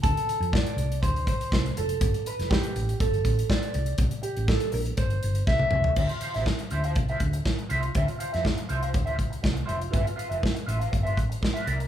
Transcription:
<<
  \new Staff \with { instrumentName = "Clean electric guitar" } { \time 4/4 \key d \minor \tempo 4 = 121 a'4 d''4 c''8 c''4 a'8~ | a'8 b'8 g'4 a'4 d''4 | r8 g'8 a'8 bes'8 c''4 e''4 | <f' c'' e''>16 r16 <f' c'' f''>16 <f' c'' e''>16 r8 <f' c'' e''>16 <f' c'' f''>16 r16 <f' c'' e''>16 r4 <f' c'' e''>16 r16 |
<f' c'' e''>16 r16 <f' c'' f''>16 <f' c'' e''>16 r8 <f' c'' e''>16 <f' c'' f''>16 r16 <f' c'' e''>16 r4 <f' c'' e''>16 r16 | <f' b' e''>16 r16 <f' b' f''>16 <f' b' e''>16 r8 <f' b' e''>16 <f' b' f''>16 r16 <f' b' e''>16 r8. <f' b' e''>16 <bes' d'' e''>16 r16 | }
  \new Staff \with { instrumentName = "Fingered electric bass" } { \clef bass \time 4/4 \key d \minor d,16 r8 f,8 r16 c,8 d,8 c,8 c,8 f,,8 | g,,16 r8 f,,8 r16 a,,8 g,,8 a,,8 r8 c,8 | c,16 r8 a,,8 r16 bes,,8 g,,8 g,,8 c,8 c,8 | d,16 r8 a,,8 r16 d,8 c,8 d,8 r8 c,8 |
d,16 r8 f,8 r16 c,8 d,8 c,8 c,8 f,,8 | g,,16 r8 f,,8 r16 a,,8 g,,8 a,,8 r8 c,8 | }
  \new DrumStaff \with { instrumentName = "Drums" } \drummode { \time 4/4 <hh bd>16 hh16 hh16 hh16 <bd sn>16 hh16 hh16 hh16 <hh bd>16 hh16 <hh bd>16 hh16 <bd sn>16 hh16 hh16 hh16 | <hh bd>16 hh16 hh16 <hh sn>16 <bd sn>16 hh16 hh16 hh16 <hh bd>16 hh16 <hh bd>16 hh16 <bd sn>16 hh16 hh16 hh16 | <hh bd>16 hh16 hh16 hh16 <bd sn>16 hh16 hho16 hh16 <hh bd>16 hh16 hh16 hh16 <bd sn>16 tommh16 toml16 tomfh16 | <cymc bd>16 hh16 hh16 <hh sn>16 <bd sn>16 hh16 hh16 hh16 <hh bd>16 hh16 <hh bd>16 hh16 <bd sn>16 hh16 hh16 hh16 |
<hh bd>16 hh16 hh16 <hh sn>16 <bd sn>16 hh16 hh16 hh16 <hh bd>16 hh16 <hh bd>16 hh16 <bd sn>16 hh16 hh16 hh16 | <hh bd>16 hh16 hh16 hh16 <bd sn>16 hh16 hh16 hh16 <hh bd>16 hh16 <hh bd>16 hh16 <bd sn>16 hh16 hh16 hh16 | }
>>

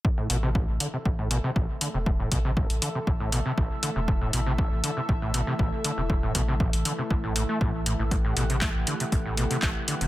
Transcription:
<<
  \new Staff \with { instrumentName = "Analog synth pad" } { \time 4/4 \key c \lydian \tempo 4 = 119 << { <a' e''>1~ | <a' e''>1~ | <a' e''>1~ | <a' e''>1 |
<g' fis''>1 | } \\ { <e a>1~ | <e a>1~ | <e a>1~ | <e a>1~ |
<e a>1 | } >> }
  \new Staff \with { instrumentName = "Acid bass" } { \clef bass \time 4/4 \key c \lydian a,16 a,16 b,16 c16 a,,16 r16 d16 c16 a,16 a,16 b,16 c16 a,,16 r16 d16 c16 | a,16 a,16 b,16 c16 a,,16 r16 d16 c16 a,16 a,16 b,16 c16 a,,16 r16 d16 c16 | a,16 a,16 b,16 c16 a,,16 r16 d16 c16 a,16 a,16 b,16 c16 a,,16 r16 d16 c16 | a,16 a,16 b,16 c16 a,,16 r16 d16 c16 a,16 a,16 a,16 a16 a,16 r16 a,16 a,16 |
a,16 a,16 b,16 c16 a16 r16 d16 c16 a,16 a,16 b,16 c16 a16 r16 d16 c16 | }
  \new Staff \with { instrumentName = "Sub bass" } { \clef bass \time 4/4 \key c \lydian r8 a,,8. a,,16 r8 a,,8. r16 a,,16 r8 e,,16~ | e,,8 a,,8. a,,16 r8 a,,8. r16 a,,16 r8 e,,16~ | e,,8 a,,8. a,,16 r8 a,,8. r16 a,,16 r8 e,,16~ | e,,8 a,,8. a,,16 r8 a,,8. r16 a,,8. a,,16~ |
a,,8 a,,8. a,,16 r8 a,,8. r16 a,,16 r8 e,,16 | }
  \new DrumStaff \with { instrumentName = "Drums" } \drummode { \time 4/4 bd8 hho8 bd8 hho8 bd8 hho8 bd8 hho8 | bd8 <hho bd>8 bd16 hho16 hho8 bd8 hho8 bd8 hho8 | bd8 hho8 bd8 hho8 bd8 hho8 bd8 hho8 | bd8 <hho bd>8 bd16 hho16 hho8 bd8 hho8 bd8 hho8 |
<hh bd>8 hho16 hh16 <hc hh bd>8 hho16 hh16 <hh bd>8 hho16 hh16 <hc hh bd>8 hho16 hh16 | }
>>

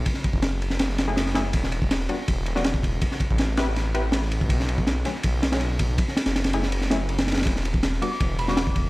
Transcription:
<<
  \new Staff \with { instrumentName = "Synth bell" } { \time 4/4 \key fis \phrygian \tempo 4 = 162 r1 | r1 | r1 | r1 |
r1 | r4. d'''16 d'''16 r8 b''16 d'''4 r16 | }
  \new Staff \with { instrumentName = "Synth stab" } { \time 4/4 \key fis \phrygian r2 r8. <a cis' e' gis'>8. <a cis' e' gis'>16 r16 | r4. <g b d' fis'>16 r4 <g b d' fis'>16 r4 | r4. <c' e' g' b'>16 r8. <c' e' g' b'>16 r4 r16 | r4. <d fis a cis'>16 r4 <d fis a cis'>16 r4 |
r4. <a cis' e' gis'>16 r8. <a cis' e' gis'>16 r4 r16 | r4. <g b d' fis'>16 r4 <g b d' fis'>16 r4 | }
  \new Staff \with { instrumentName = "Detuned saw bass" } { \clef bass \time 4/4 \key fis \phrygian r8. fis,,2.~ fis,,16 | e,,4. r8 e,,2 | r8. a,,2.~ a,,16 | b,,4. r8 b,,2 |
r8. fis,,2.~ fis,,16 | e,,4. r8 e,,2 | }
  \new DrumStaff \with { instrumentName = "Drums" } \drummode { \time 4/4 <bd cymr>16 sn16 <bd cymr>16 bd16 <cymr sn>8 cymr16 sn16 <cymr sn>16 sn16 <cymr sn>8 <cymr sn>16 sn16 <cymr sn>16 sn16 | <bd cymr>16 sn16 cymr16 bd16 <cymr sn>16 sn16 cymr8 <bd cymr>8 cymr16 sn16 <cymr sn>16 bd16 <bd cymr>8 | <bd cymr>16 sn16 <bd cymr>16 bd16 <cymr sn>8 <cymr sn>16 sn16 <cymr sn>8 cymr8 <cymr sn>16 sn16 cymr16 bd16 | <bd cymr>16 sn16 cymr16 bd16 <cymr sn>16 sn16 <cymr sn>8 <bd cymr>8 <cymr sn>16 <cymr sn>16 <cymr sn>8 <bd cymr>8 |
<bd cymr>16 sn16 <cymr sn>16 <cymr sn>16 <cymr sn>16 <cymr sn>16 cymr16 sn16 cymr16 sn16 <cymr sn>8 cymr16 <cymr sn>16 <cymr sn>32 <cymr sn>32 <cymr sn>32 <cymr sn>32 | <bd cymr>16 sn16 cymr16 bd16 <cymr sn>16 sn16 cymr8 <bd cymr>8 cymr16 sn16 <cymr sn>16 bd16 <bd cymr>8 | }
>>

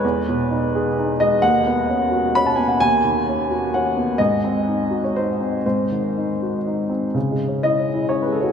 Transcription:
\new Staff \with { instrumentName = "Upright piano" } { \time 3/4 \key cis \minor \tempo 4 = 128 << { b'2~ b'8 dis''8 | fis''2 b''16 a''16 gis''16 fis''16 | gis''2 fis''8 r8 | dis''4.~ dis''16 cis''16 bis'4 |
bis'2~ bis'8 r8 | r4 dis''4 cis''16 b'16 a'16 fis'16 | } \\ { <e, gis>8 b,8 dis'8 gis'8 dis'8 gis8 | dis,8 b8 cis'8 fis'8 cis'8 b8 | dis,8 dis8 cis'8 fis'8 cis'8 b8 | gis,8 bis8 dis'8 fis'8 dis'8 bis8 |
gis,8 dis8 dis'8 fis'8 dis'8 bis8 | \tuplet 3/2 { cis8 gis8 cis'8 e'8 cis'8 e'8 cis'8 gis8 cis'8 } | } >> }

